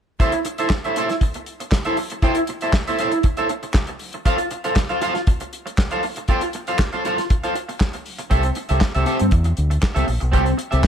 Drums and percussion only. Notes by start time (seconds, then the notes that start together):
0.20 kick, closed hi-hat
0.32 closed hi-hat
0.45 closed hi-hat
0.58 closed hi-hat
0.70 kick, snare, clap
0.84 closed hi-hat
0.96 closed hi-hat
1.09 snare, closed hi-hat
1.21 kick, closed hi-hat
1.34 closed hi-hat
1.46 closed hi-hat
1.60 closed hi-hat
1.72 kick, snare, clap
1.85 closed hi-hat
1.97 open hi-hat
2.10 closed hi-hat
2.22 kick, closed hi-hat
2.35 closed hi-hat
2.47 closed hi-hat
2.61 closed hi-hat
2.73 kick, snare, clap
2.87 closed hi-hat
2.99 closed hi-hat
3.12 closed hi-hat
3.23 kick, closed hi-hat
3.37 closed hi-hat
3.49 closed hi-hat
3.63 closed hi-hat
3.74 kick, snare, clap
3.87 closed hi-hat
3.99 open hi-hat
4.13 closed hi-hat
4.25 kick, closed hi-hat
4.38 closed hi-hat
4.51 closed hi-hat
4.64 closed hi-hat
4.76 kick, snare, clap
4.89 closed hi-hat
5.01 closed hi-hat
5.15 snare, closed hi-hat
5.27 kick, closed hi-hat
5.40 closed hi-hat
5.53 closed hi-hat
5.67 closed hi-hat
5.78 kick, snare, clap
5.91 closed hi-hat
6.03 open hi-hat
6.16 closed hi-hat
6.28 kick, closed hi-hat
6.41 closed hi-hat
6.53 closed hi-hat
6.67 closed hi-hat
6.79 kick, snare, clap
6.93 closed hi-hat
7.05 closed hi-hat
7.18 snare, closed hi-hat
7.30 kick, closed hi-hat
7.44 closed hi-hat
7.55 closed hi-hat
7.69 closed hi-hat
7.81 kick, snare, clap
7.93 closed hi-hat
8.06 open hi-hat
8.18 closed hi-hat
8.31 kick, closed hi-hat
8.43 closed hi-hat
8.55 closed hi-hat
8.69 closed hi-hat
8.81 kick, snare, clap
8.94 closed hi-hat
9.06 closed hi-hat
9.19 closed hi-hat
9.31 kick, closed hi-hat
9.44 closed hi-hat
9.57 closed hi-hat
9.71 closed hi-hat
9.83 kick, snare, clap
9.96 closed hi-hat
10.08 open hi-hat
10.21 closed hi-hat
10.33 kick, closed hi-hat
10.46 closed hi-hat
10.59 closed hi-hat
10.72 closed hi-hat
10.84 kick